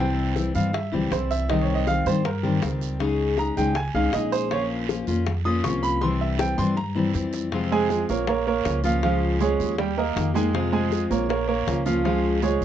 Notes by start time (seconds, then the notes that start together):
Already playing: C2 C3
0.00 E3 G3 C4 E4 G5
0.35 E3 G3 C4 E4, high bongo, short guiro
0.54 G2 E3 G3 C4 E4 F5, high bongo, short guiro
0.73 E5, muted steel-string acoustic guitar stroke, high bongo, long guiro
0.92 C#2 E3 G3 C4 E4 G4, high bongo
1.11 C2 E3 G3 C4 E4 C5, high bongo, low bongo, short guiro
1.31 E5, short guiro
1.49 C3 D#3 G3 C4 G4 D#5, high bongo, long guiro
1.62 C#5
1.75 D#5
1.87 D#3 G3 C4 G4 F5, high bongo, short guiro
2.06 G2 D#3 G3 C4 G4 C5, high bongo, short guiro
2.25 A#4, muted steel-string acoustic guitar stroke, high bongo, long guiro
2.43 D#3 G3 C4 G4, high bongo
2.62 C#2 D#3 G3 C4 G4, high bongo, low bongo, short guiro
2.81 high bongo, short guiro
2.99 C#3 G#3 C#4 D#4 G#4, high bongo, long guiro
3.38 G#3 C#4 D#4 G#4 A#5, high bongo, short guiro
3.57 C#2 G#3 C#4 D#4 G#4 G5, high bongo, short guiro
3.75 G#5, muted steel-string acoustic guitar stroke, high bongo, long guiro
3.94 C2 G#3 C#4 D#4 G#4 F5, high bongo
4.13 A#1 G#3 C#4 D#4 G#4 D#5, high bongo, low bongo, short guiro
4.32 C5, short guiro
4.51 F3 A#3 C#4 F4 C#5, high bongo, long guiro
4.89 F3 A#3 C#4 F4, high bongo, short guiro
5.07 F2 A#3 C#4 F4, high bongo, short guiro
5.27 muted steel-string acoustic guitar stroke, high bongo, long guiro
5.45 A#3 C#4 F4 D#6, high bongo
5.64 C2 F3 A#3 C#4 F4 C#6, high bongo, low bongo, short guiro
5.83 B5, high bongo, short guiro
6.01 C3 E3 G3 C4 E4 C6, high bongo, long guiro
6.21 E5
6.39 E3 G3 C4 E4 G5, high bongo, short guiro
6.58 G2 E3 G3 C4 E4 C6, low bongo, short guiro
6.77 A#5, muted steel-string acoustic guitar stroke, low bongo, long guiro
6.95 E3 G3 C4 E4
7.14 F2 E3 G3 C4 E4, low bongo, short guiro
7.33 low bongo, short guiro
7.52 C3 F3 G#3 C4 F4, high bongo, long guiro
7.72 G#3 G#4 G#5
7.90 F3 G#3 C4 F4, high bongo, short guiro
8.09 A#1 A#3 A#4 C#5, high bongo, short guiro
8.27 A#3 A#4 C#5, muted steel-string acoustic guitar stroke, high bongo, long guiro
8.47 A#3 A#4 C#5, high bongo
8.65 C#2 F3 A#3 C#4 F4, high bongo, low bongo, short guiro
8.84 F3 A#3 C#4 F4 F5, high bongo, short guiro
9.03 C#3 F3 G#3 C#4 F4 F5, high bongo, long guiro
9.41 F3 G#3 C#4 F4 G#4 C#5, high bongo, short guiro
9.60 D#2, high bongo, short guiro
9.78 G3 G4 G5, muted steel-string acoustic guitar stroke, high bongo, long guiro
9.98 A#3 A#4 D#5, high bongo
10.16 F2 D#3 A#3 D#4 G4, high bongo, low bongo, short guiro
10.34 G#3 A#3 D#4 G4 G#4 G#5, short guiro
10.53 C3 F3 G#3 C4 F4, high bongo, long guiro
10.73 G#3 G#4 G#5
10.91 F3 G#3 C4 F4, high bongo, short guiro
11.10 A#1 A#3 A#4 C#5, high bongo, short guiro
11.29 A#3 A#4 C#5, muted steel-string acoustic guitar stroke, high bongo, long guiro
11.48 A#3 A#4 C#5, high bongo
11.67 C#2 F3 A#3 C#4 F4, high bongo, low bongo, short guiro
11.85 F3 A#3 C#4 F4 F5, high bongo, short guiro
12.04 C#3 F3 G#3 C#4 F4 F5, high bongo, long guiro
12.42 F3 G#3 C#4 F4 G#4 C#5, high bongo, short guiro
12.61 D#2